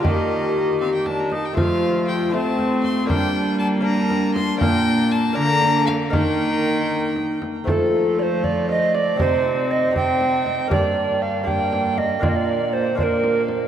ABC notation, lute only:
X:1
M:6/8
L:1/8
Q:3/8=79
K:Fmix
V:1 name="Lute"
[B,Ge]6 | [A,Fc]3 [A,Fc]3 | [B,DB]3 [B,DB]3 | [B,DB]3 [B,DB]3 |
[B,EB]6 | [A,CF]6 | [CEG]3 [CEG]3 | [B,DG]3 [B,DG]3 |
[B,DF]3 [B,DF]3 |]
V:2 name="Lute" clef=bass
E,4- E, z | F,3 A,3 | G,6 | B,,3 D,3 |
E,4- E, z | F,6 | C,6 | G,,6 |
B,,6 |]